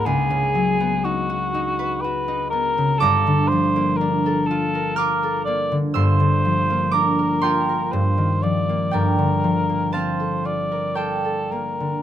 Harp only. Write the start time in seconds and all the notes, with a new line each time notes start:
Already playing: D#4 F#5 B5 D#6
0.06 C#2
0.30 C#3
0.55 F#3
0.80 B3
1.05 D#4
1.30 F#4
1.54 D#4
1.79 B4
2.04 F#4
2.28 D#4
2.53 B3
2.78 C#3
3.00 G1 G2 A#5 D6
3.27 D3
3.52 F3
3.76 A#3
4.01 D4
4.26 A4
4.51 F4
4.75 A#4
4.96 F4 D6 F6
5.23 A4
5.47 A#3
5.72 D3
5.94 G1 G2 C6 E6
6.20 D3
6.45 F3
6.70 A#3
6.91 D4 A#5 D6
7.19 A#4
7.42 F4 G5 C6
7.69 A#4
7.93 G2
8.18 D#3
8.43 F3
8.69 A#3
8.91 G1 G2 D5 G5
9.18 D3
9.44 F3
9.69 A#3
9.93 C4 F5 A5
10.20 A4
10.45 F4
10.72 A#4
10.95 F4 D5 G5
11.24 A4
11.52 A#3
11.80 D3